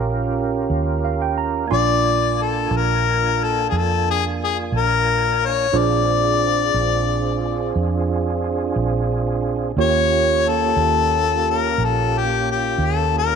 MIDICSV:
0, 0, Header, 1, 5, 480
1, 0, Start_track
1, 0, Tempo, 671141
1, 1225, Time_signature, 12, 3, 24, 8
1, 9551, End_track
2, 0, Start_track
2, 0, Title_t, "Harmonica"
2, 0, Program_c, 0, 22
2, 1241, Note_on_c, 0, 74, 120
2, 1736, Note_on_c, 0, 69, 96
2, 1747, Note_off_c, 0, 74, 0
2, 1978, Note_on_c, 0, 70, 88
2, 1989, Note_off_c, 0, 69, 0
2, 2457, Note_on_c, 0, 69, 83
2, 2468, Note_off_c, 0, 70, 0
2, 2630, Note_off_c, 0, 69, 0
2, 2644, Note_on_c, 0, 68, 62
2, 2700, Note_on_c, 0, 69, 87
2, 2710, Note_off_c, 0, 68, 0
2, 2921, Note_off_c, 0, 69, 0
2, 2937, Note_on_c, 0, 68, 79
2, 3037, Note_off_c, 0, 68, 0
2, 3175, Note_on_c, 0, 68, 70
2, 3276, Note_off_c, 0, 68, 0
2, 3409, Note_on_c, 0, 70, 103
2, 3902, Note_on_c, 0, 73, 90
2, 3913, Note_off_c, 0, 70, 0
2, 4137, Note_on_c, 0, 74, 106
2, 4148, Note_off_c, 0, 73, 0
2, 5559, Note_off_c, 0, 74, 0
2, 7015, Note_on_c, 0, 73, 101
2, 7502, Note_on_c, 0, 69, 114
2, 7513, Note_off_c, 0, 73, 0
2, 8227, Note_on_c, 0, 70, 92
2, 8237, Note_off_c, 0, 69, 0
2, 8473, Note_on_c, 0, 69, 81
2, 8484, Note_off_c, 0, 70, 0
2, 8711, Note_on_c, 0, 67, 84
2, 8721, Note_off_c, 0, 69, 0
2, 8929, Note_off_c, 0, 67, 0
2, 8950, Note_on_c, 0, 67, 79
2, 9193, Note_on_c, 0, 69, 91
2, 9204, Note_off_c, 0, 67, 0
2, 9411, Note_off_c, 0, 69, 0
2, 9426, Note_on_c, 0, 70, 101
2, 9551, Note_off_c, 0, 70, 0
2, 9551, End_track
3, 0, Start_track
3, 0, Title_t, "Tine electric piano"
3, 0, Program_c, 1, 4
3, 0, Note_on_c, 1, 61, 55
3, 0, Note_on_c, 1, 65, 50
3, 0, Note_on_c, 1, 67, 51
3, 0, Note_on_c, 1, 70, 63
3, 748, Note_on_c, 1, 77, 53
3, 859, Note_off_c, 1, 77, 0
3, 871, Note_on_c, 1, 79, 60
3, 980, Note_off_c, 1, 79, 0
3, 985, Note_on_c, 1, 82, 56
3, 1196, Note_off_c, 1, 67, 0
3, 1197, Note_off_c, 1, 70, 0
3, 1198, Note_off_c, 1, 65, 0
3, 1199, Note_off_c, 1, 61, 0
3, 1208, Note_off_c, 1, 82, 0
3, 1217, Note_on_c, 1, 62, 54
3, 1221, Note_on_c, 1, 65, 51
3, 1221, Note_on_c, 1, 84, 61
3, 1223, Note_on_c, 1, 80, 49
3, 4069, Note_off_c, 1, 62, 0
3, 4071, Note_off_c, 1, 65, 0
3, 4071, Note_off_c, 1, 80, 0
3, 4071, Note_off_c, 1, 84, 0
3, 4101, Note_on_c, 1, 62, 60
3, 4103, Note_on_c, 1, 65, 52
3, 4103, Note_on_c, 1, 72, 62
3, 4106, Note_on_c, 1, 68, 55
3, 6954, Note_off_c, 1, 62, 0
3, 6955, Note_off_c, 1, 65, 0
3, 6955, Note_off_c, 1, 72, 0
3, 6957, Note_off_c, 1, 68, 0
3, 6995, Note_on_c, 1, 58, 51
3, 6996, Note_on_c, 1, 65, 58
3, 6996, Note_on_c, 1, 67, 51
3, 6997, Note_on_c, 1, 73, 60
3, 9551, Note_off_c, 1, 58, 0
3, 9551, Note_off_c, 1, 65, 0
3, 9551, Note_off_c, 1, 67, 0
3, 9551, Note_off_c, 1, 73, 0
3, 9551, End_track
4, 0, Start_track
4, 0, Title_t, "Tonewheel organ"
4, 0, Program_c, 2, 16
4, 0, Note_on_c, 2, 61, 72
4, 0, Note_on_c, 2, 65, 77
4, 0, Note_on_c, 2, 67, 66
4, 0, Note_on_c, 2, 70, 69
4, 1187, Note_off_c, 2, 61, 0
4, 1189, Note_off_c, 2, 65, 0
4, 1189, Note_off_c, 2, 67, 0
4, 1190, Note_off_c, 2, 70, 0
4, 1193, Note_on_c, 2, 58, 68
4, 1193, Note_on_c, 2, 62, 69
4, 1198, Note_on_c, 2, 65, 69
4, 1198, Note_on_c, 2, 80, 65
4, 4057, Note_off_c, 2, 58, 0
4, 4057, Note_off_c, 2, 62, 0
4, 4059, Note_off_c, 2, 65, 0
4, 4059, Note_off_c, 2, 80, 0
4, 4090, Note_on_c, 2, 62, 72
4, 4093, Note_on_c, 2, 60, 74
4, 4093, Note_on_c, 2, 65, 74
4, 4098, Note_on_c, 2, 68, 74
4, 6948, Note_off_c, 2, 62, 0
4, 6950, Note_off_c, 2, 60, 0
4, 6950, Note_off_c, 2, 65, 0
4, 6952, Note_off_c, 2, 68, 0
4, 6994, Note_on_c, 2, 65, 74
4, 7002, Note_on_c, 2, 67, 73
4, 7003, Note_on_c, 2, 58, 69
4, 7004, Note_on_c, 2, 61, 76
4, 9551, Note_off_c, 2, 58, 0
4, 9551, Note_off_c, 2, 61, 0
4, 9551, Note_off_c, 2, 65, 0
4, 9551, Note_off_c, 2, 67, 0
4, 9551, End_track
5, 0, Start_track
5, 0, Title_t, "Fingered electric bass"
5, 0, Program_c, 3, 33
5, 0, Note_on_c, 3, 34, 84
5, 474, Note_off_c, 3, 34, 0
5, 499, Note_on_c, 3, 39, 85
5, 1193, Note_off_c, 3, 39, 0
5, 1226, Note_on_c, 3, 34, 97
5, 1916, Note_off_c, 3, 34, 0
5, 1937, Note_on_c, 3, 34, 92
5, 2631, Note_off_c, 3, 34, 0
5, 2661, Note_on_c, 3, 41, 80
5, 3352, Note_off_c, 3, 41, 0
5, 3377, Note_on_c, 3, 34, 92
5, 4070, Note_off_c, 3, 34, 0
5, 4101, Note_on_c, 3, 34, 97
5, 4793, Note_off_c, 3, 34, 0
5, 4823, Note_on_c, 3, 34, 91
5, 5513, Note_off_c, 3, 34, 0
5, 5547, Note_on_c, 3, 41, 80
5, 6236, Note_off_c, 3, 41, 0
5, 6265, Note_on_c, 3, 34, 95
5, 6956, Note_off_c, 3, 34, 0
5, 6984, Note_on_c, 3, 39, 107
5, 7676, Note_off_c, 3, 39, 0
5, 7699, Note_on_c, 3, 39, 84
5, 8395, Note_off_c, 3, 39, 0
5, 8426, Note_on_c, 3, 34, 77
5, 9119, Note_off_c, 3, 34, 0
5, 9142, Note_on_c, 3, 39, 98
5, 9551, Note_off_c, 3, 39, 0
5, 9551, End_track
0, 0, End_of_file